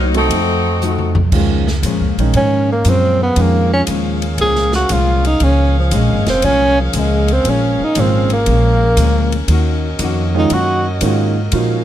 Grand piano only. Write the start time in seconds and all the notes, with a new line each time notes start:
0.14 A3 C4 D#4 F#4
1.33 D#3 G#3 C#4 F4
2.20 D#3 G#3 C#4 D#4
3.37 D#3 G#3 C#4 F4
7.96 D#3 G#3 C#4 F4
10.35 D#3 G#3 C#4 F4
11.01 D#3 G#3 C#4 F4
11.53 F3 A#3 D#4 F#4